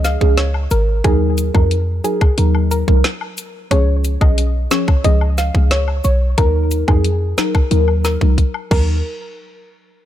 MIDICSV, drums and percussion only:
0, 0, Header, 1, 2, 480
1, 0, Start_track
1, 0, Key_signature, -6, "minor"
1, 0, Tempo, 666667
1, 753, Time_signature, 4, 2, 24, 8
1, 7237, End_track
2, 0, Start_track
2, 0, Title_t, "Drums"
2, 32, Note_on_c, 9, 69, 74
2, 33, Note_on_c, 9, 38, 71
2, 34, Note_on_c, 9, 42, 47
2, 104, Note_off_c, 9, 69, 0
2, 105, Note_off_c, 9, 38, 0
2, 106, Note_off_c, 9, 42, 0
2, 153, Note_on_c, 9, 36, 97
2, 225, Note_off_c, 9, 36, 0
2, 270, Note_on_c, 9, 38, 116
2, 273, Note_on_c, 9, 42, 68
2, 342, Note_off_c, 9, 38, 0
2, 345, Note_off_c, 9, 42, 0
2, 391, Note_on_c, 9, 76, 67
2, 463, Note_off_c, 9, 76, 0
2, 508, Note_on_c, 9, 69, 83
2, 513, Note_on_c, 9, 42, 54
2, 580, Note_off_c, 9, 69, 0
2, 585, Note_off_c, 9, 42, 0
2, 751, Note_on_c, 9, 42, 79
2, 752, Note_on_c, 9, 36, 120
2, 753, Note_on_c, 9, 76, 66
2, 823, Note_off_c, 9, 42, 0
2, 824, Note_off_c, 9, 36, 0
2, 825, Note_off_c, 9, 76, 0
2, 990, Note_on_c, 9, 69, 80
2, 992, Note_on_c, 9, 42, 63
2, 1062, Note_off_c, 9, 69, 0
2, 1064, Note_off_c, 9, 42, 0
2, 1113, Note_on_c, 9, 36, 93
2, 1115, Note_on_c, 9, 76, 72
2, 1185, Note_off_c, 9, 36, 0
2, 1187, Note_off_c, 9, 76, 0
2, 1232, Note_on_c, 9, 42, 76
2, 1304, Note_off_c, 9, 42, 0
2, 1472, Note_on_c, 9, 42, 57
2, 1472, Note_on_c, 9, 69, 77
2, 1544, Note_off_c, 9, 42, 0
2, 1544, Note_off_c, 9, 69, 0
2, 1593, Note_on_c, 9, 36, 99
2, 1594, Note_on_c, 9, 76, 83
2, 1665, Note_off_c, 9, 36, 0
2, 1666, Note_off_c, 9, 76, 0
2, 1711, Note_on_c, 9, 42, 81
2, 1783, Note_off_c, 9, 42, 0
2, 1833, Note_on_c, 9, 76, 71
2, 1905, Note_off_c, 9, 76, 0
2, 1952, Note_on_c, 9, 69, 81
2, 1954, Note_on_c, 9, 42, 50
2, 2024, Note_off_c, 9, 69, 0
2, 2026, Note_off_c, 9, 42, 0
2, 2073, Note_on_c, 9, 36, 96
2, 2145, Note_off_c, 9, 36, 0
2, 2191, Note_on_c, 9, 38, 114
2, 2193, Note_on_c, 9, 42, 66
2, 2263, Note_off_c, 9, 38, 0
2, 2265, Note_off_c, 9, 42, 0
2, 2312, Note_on_c, 9, 76, 69
2, 2384, Note_off_c, 9, 76, 0
2, 2429, Note_on_c, 9, 69, 81
2, 2433, Note_on_c, 9, 42, 54
2, 2501, Note_off_c, 9, 69, 0
2, 2505, Note_off_c, 9, 42, 0
2, 2672, Note_on_c, 9, 36, 119
2, 2672, Note_on_c, 9, 42, 80
2, 2674, Note_on_c, 9, 76, 66
2, 2744, Note_off_c, 9, 36, 0
2, 2744, Note_off_c, 9, 42, 0
2, 2746, Note_off_c, 9, 76, 0
2, 2911, Note_on_c, 9, 69, 79
2, 2913, Note_on_c, 9, 42, 64
2, 2983, Note_off_c, 9, 69, 0
2, 2985, Note_off_c, 9, 42, 0
2, 3033, Note_on_c, 9, 36, 97
2, 3035, Note_on_c, 9, 76, 75
2, 3105, Note_off_c, 9, 36, 0
2, 3107, Note_off_c, 9, 76, 0
2, 3153, Note_on_c, 9, 42, 80
2, 3225, Note_off_c, 9, 42, 0
2, 3392, Note_on_c, 9, 42, 61
2, 3392, Note_on_c, 9, 69, 79
2, 3393, Note_on_c, 9, 38, 118
2, 3464, Note_off_c, 9, 42, 0
2, 3464, Note_off_c, 9, 69, 0
2, 3465, Note_off_c, 9, 38, 0
2, 3513, Note_on_c, 9, 36, 98
2, 3514, Note_on_c, 9, 76, 78
2, 3585, Note_off_c, 9, 36, 0
2, 3586, Note_off_c, 9, 76, 0
2, 3632, Note_on_c, 9, 42, 83
2, 3633, Note_on_c, 9, 36, 105
2, 3704, Note_off_c, 9, 42, 0
2, 3705, Note_off_c, 9, 36, 0
2, 3753, Note_on_c, 9, 76, 68
2, 3825, Note_off_c, 9, 76, 0
2, 3872, Note_on_c, 9, 69, 79
2, 3874, Note_on_c, 9, 38, 67
2, 3875, Note_on_c, 9, 42, 46
2, 3944, Note_off_c, 9, 69, 0
2, 3946, Note_off_c, 9, 38, 0
2, 3947, Note_off_c, 9, 42, 0
2, 3993, Note_on_c, 9, 36, 99
2, 4065, Note_off_c, 9, 36, 0
2, 4111, Note_on_c, 9, 38, 114
2, 4113, Note_on_c, 9, 42, 73
2, 4183, Note_off_c, 9, 38, 0
2, 4185, Note_off_c, 9, 42, 0
2, 4232, Note_on_c, 9, 76, 69
2, 4304, Note_off_c, 9, 76, 0
2, 4348, Note_on_c, 9, 69, 79
2, 4353, Note_on_c, 9, 42, 54
2, 4420, Note_off_c, 9, 69, 0
2, 4425, Note_off_c, 9, 42, 0
2, 4592, Note_on_c, 9, 42, 79
2, 4593, Note_on_c, 9, 36, 113
2, 4593, Note_on_c, 9, 76, 65
2, 4664, Note_off_c, 9, 42, 0
2, 4665, Note_off_c, 9, 36, 0
2, 4665, Note_off_c, 9, 76, 0
2, 4830, Note_on_c, 9, 69, 82
2, 4834, Note_on_c, 9, 42, 63
2, 4902, Note_off_c, 9, 69, 0
2, 4906, Note_off_c, 9, 42, 0
2, 4953, Note_on_c, 9, 36, 90
2, 4955, Note_on_c, 9, 76, 77
2, 5025, Note_off_c, 9, 36, 0
2, 5027, Note_off_c, 9, 76, 0
2, 5072, Note_on_c, 9, 42, 80
2, 5144, Note_off_c, 9, 42, 0
2, 5312, Note_on_c, 9, 42, 59
2, 5312, Note_on_c, 9, 69, 76
2, 5313, Note_on_c, 9, 38, 114
2, 5384, Note_off_c, 9, 42, 0
2, 5384, Note_off_c, 9, 69, 0
2, 5385, Note_off_c, 9, 38, 0
2, 5433, Note_on_c, 9, 36, 96
2, 5434, Note_on_c, 9, 76, 81
2, 5505, Note_off_c, 9, 36, 0
2, 5506, Note_off_c, 9, 76, 0
2, 5552, Note_on_c, 9, 42, 83
2, 5624, Note_off_c, 9, 42, 0
2, 5673, Note_on_c, 9, 76, 67
2, 5745, Note_off_c, 9, 76, 0
2, 5792, Note_on_c, 9, 69, 75
2, 5794, Note_on_c, 9, 38, 68
2, 5795, Note_on_c, 9, 42, 48
2, 5864, Note_off_c, 9, 69, 0
2, 5866, Note_off_c, 9, 38, 0
2, 5867, Note_off_c, 9, 42, 0
2, 5913, Note_on_c, 9, 36, 95
2, 5985, Note_off_c, 9, 36, 0
2, 6033, Note_on_c, 9, 36, 59
2, 6034, Note_on_c, 9, 42, 70
2, 6105, Note_off_c, 9, 36, 0
2, 6106, Note_off_c, 9, 42, 0
2, 6151, Note_on_c, 9, 76, 70
2, 6223, Note_off_c, 9, 76, 0
2, 6272, Note_on_c, 9, 36, 106
2, 6272, Note_on_c, 9, 49, 92
2, 6272, Note_on_c, 9, 76, 83
2, 6344, Note_off_c, 9, 36, 0
2, 6344, Note_off_c, 9, 49, 0
2, 6344, Note_off_c, 9, 76, 0
2, 7237, End_track
0, 0, End_of_file